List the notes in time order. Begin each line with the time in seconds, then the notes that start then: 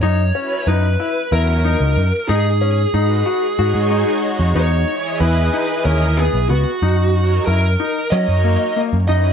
0.02 F#2 D#4 C#5
0.34 F#3 C#4 E4 B4
0.67 F#2 D#4 B4
1.00 E4
1.31 E2 F#3 C#4 E4 F#4 A#4
1.65 D#4
1.80 C#2
1.97 F#2
2.28 G#2 D#4 G#4
2.61 C#4
2.93 G#2 G#3 D#4 F#4 B4
3.26 F#4
3.58 G#2 G#3 D#4 F#4 C#5
3.75 G#2
3.91 D#4
4.40 F2
4.55 E2 D#4 C#5
4.87 E3 E4 G#4 D#5
5.20 E2 E4 B4
5.53 D#4
5.84 D#2 E3 C#4 E4 G#4 A#4 D#5
6.17 B3 G#4
6.34 B1
6.49 C#2 B3 F#4
6.82 F#2 D#4
7.14 F#3 D#4 A#4 C#5
7.46 F#2 E4 A#4
7.80 D#4
8.10 F#3 C#4 D#4 A#4 C#5 D#5
8.28 F#2
8.44 A#3
8.76 A#3
8.93 F#2
9.08 F#2 F#3 C#4 D#4 E4 B4 D#5